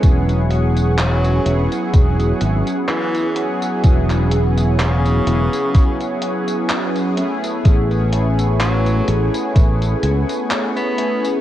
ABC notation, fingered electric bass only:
X:1
M:4/4
L:1/8
Q:"Swing 16ths" 1/4=63
K:E
V:1 name="Fingered electric bass" clef=bass
E,,,3 E,,, E,,, G,,, z2 | E,,,3 E,,, z4 | A,,,3 A,,, A,,, C,, z2 |]